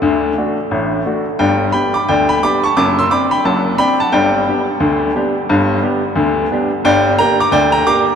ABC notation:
X:1
M:2/4
L:1/16
Q:"Swing 16ths" 1/4=88
K:Glyd
V:1 name="Grand piano"
[Ad]6 z2 | [dg]2 [gb] [bd'] [dg] [gb] [bd'] [ac'] | [ad'] [=c'e'] [bd'] [gb] [fa]2 [gb] [fa] | [dg]8- |
[dg]6 z2 | [dg]2 [g_b] [bd'] [dg] [gb] [bd']2 |]
V:2 name="Grand piano"
[D,,D,]2 [A,DF]2 [A,,,A,,]2 [A,DF]2 | [G,,,G,,]2 [B,DG]2 [D,,D,]2 [B,DG]2 | [F,,,F,,]2 [=CD]2 [F,,,F,,]2 [CD]2 | [G,,,G,,]2 [B,DG]2 [D,,D,]2 [B,DG]2 |
[G,,,G,,]2 [B,DG]2 [D,,D,]2 [B,DG]2 | [G,,,G,,]2 [_B,DG]2 [D,,D,]2 [B,DG]2 |]